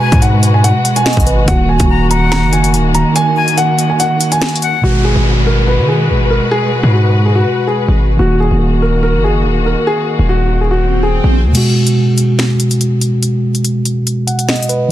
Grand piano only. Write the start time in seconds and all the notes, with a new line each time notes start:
Already playing: G#5
0.22 F#5
0.54 G#5
0.64 F#5
0.96 G#5
1.48 F#5
1.69 G#5
2.11 A#5
2.32 A#5
2.53 G#5
2.95 A#5
3.16 G#5
3.58 F#5
3.90 G#5
4.00 F#5
4.32 G#5
4.84 F#4
5.04 G#4
5.46 A#4
5.67 B4
5.88 G#4
6.30 A#4
6.51 G#4
6.93 F#4
7.25 G#4
7.35 F#4
7.67 G#4
8.19 F#4
8.40 G#4
8.82 A#4
9.03 A#4
9.24 G#4
9.66 A#4
9.87 G#4
10.29 F#4
10.61 G#4
10.71 F#4
11.03 G#4